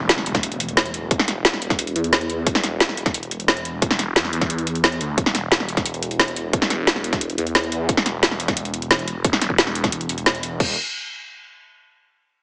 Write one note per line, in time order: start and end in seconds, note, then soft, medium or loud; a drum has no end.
0.00 1.10 E1 loud
0.00 impact medium
0.09 snare loud
0.09 closed hi-hat medium
0.18 snare soft
0.26 closed hi-hat medium
0.35 kick loud
0.35 snare soft
0.35 closed hi-hat soft
0.43 closed hi-hat medium
0.52 closed hi-hat soft
0.60 closed hi-hat medium
0.69 closed hi-hat soft
0.77 snare loud
0.77 closed hi-hat loud
0.86 closed hi-hat soft
0.94 closed hi-hat medium
1.11 1.44 E1 medium
1.11 kick loud
1.11 closed hi-hat medium
1.19 snare medium
1.28 snare soft
1.28 closed hi-hat medium
1.45 1.94 E1 medium
1.45 snare loud
1.45 closed hi-hat loud
1.53 snare soft
1.62 closed hi-hat medium
1.70 kick loud
1.70 snare soft
1.70 closed hi-hat soft
1.79 closed hi-hat medium
1.87 closed hi-hat soft
1.96 2.45 E2 loud
1.96 closed hi-hat medium
2.04 closed hi-hat soft
2.13 snare loud
2.13 closed hi-hat loud
2.21 closed hi-hat soft
2.30 closed hi-hat medium
2.47 3.81 E1 medium
2.47 kick loud
2.47 closed hi-hat medium
2.55 snare medium
2.64 snare soft
2.64 closed hi-hat medium
2.80 snare loud
2.80 closed hi-hat medium
2.89 snare soft
2.97 closed hi-hat medium
3.06 kick loud
3.06 snare soft
3.06 closed hi-hat soft
3.14 closed hi-hat medium
3.23 closed hi-hat soft
3.31 closed hi-hat medium
3.40 closed hi-hat soft
3.48 snare loud
3.48 closed hi-hat loud
3.57 closed hi-hat soft
3.65 closed hi-hat medium
3.82 4.15 E1 medium
3.82 kick loud
3.82 closed hi-hat medium
3.91 snare medium
3.99 snare soft
3.99 closed hi-hat medium
4.16 4.99 E2 medium
4.16 snare loud
4.16 closed hi-hat medium
4.25 snare soft
4.33 closed hi-hat medium
4.41 kick loud
4.41 snare soft
4.41 closed hi-hat soft
4.50 closed hi-hat medium
4.58 closed hi-hat soft
4.67 closed hi-hat medium
4.75 closed hi-hat soft
4.84 snare loud
4.84 closed hi-hat medium
4.92 closed hi-hat soft
5.01 5.16 D2 loud
5.01 closed hi-hat medium
5.18 6.52 E1 medium
5.18 kick loud
5.18 closed hi-hat medium
5.26 snare medium
5.35 snare soft
5.35 closed hi-hat medium
5.52 snare loud
5.52 closed hi-hat medium
5.60 snare soft
5.69 closed hi-hat medium
5.77 kick loud
5.77 snare soft
5.77 closed hi-hat soft
5.86 closed hi-hat medium
5.94 closed hi-hat soft
6.03 closed hi-hat medium
6.11 closed hi-hat soft
6.20 snare loud
6.20 closed hi-hat medium
6.28 closed hi-hat soft
6.36 closed hi-hat medium
6.53 6.86 E1 loud
6.53 kick loud
6.53 closed hi-hat loud
6.62 snare medium
6.70 snare soft
6.70 closed hi-hat medium
6.87 7.37 E1 loud
6.87 snare loud
6.87 closed hi-hat medium
6.96 snare soft
7.04 closed hi-hat medium
7.13 kick loud
7.13 snare soft
7.13 closed hi-hat soft
7.21 closed hi-hat medium
7.30 closed hi-hat soft
7.38 7.88 E2 loud
7.38 closed hi-hat medium
7.47 closed hi-hat soft
7.55 snare loud
7.55 closed hi-hat loud
7.64 closed hi-hat soft
7.72 closed hi-hat medium
7.89 9.23 E1 medium
7.89 kick loud
7.89 closed hi-hat loud
7.97 snare medium
8.06 snare soft
8.06 closed hi-hat medium
8.23 snare loud
8.23 closed hi-hat loud
8.31 snare soft
8.40 closed hi-hat medium
8.48 kick loud
8.48 snare soft
8.48 closed hi-hat soft
8.57 closed hi-hat loud
8.65 closed hi-hat soft
8.74 closed hi-hat medium
8.82 closed hi-hat soft
8.91 snare loud
8.91 closed hi-hat loud
8.99 closed hi-hat soft
9.08 closed hi-hat medium
9.24 9.57 E1 medium
9.24 kick loud
9.24 closed hi-hat loud
9.33 snare medium
9.41 snare soft
9.41 closed hi-hat medium
9.50 kick medium
9.58 10.08 E1 medium
9.58 snare loud
9.58 closed hi-hat loud
9.67 snare soft
9.75 closed hi-hat medium
9.84 kick loud
9.84 snare soft
9.84 closed hi-hat soft
9.92 closed hi-hat medium
10.01 closed hi-hat soft
10.09 10.59 E1 medium
10.09 closed hi-hat medium
10.18 closed hi-hat soft
10.26 snare loud
10.26 closed hi-hat loud
10.35 closed hi-hat soft
10.43 closed hi-hat medium
10.60 10.76 E1 loud
10.60 kick loud
10.60 crash medium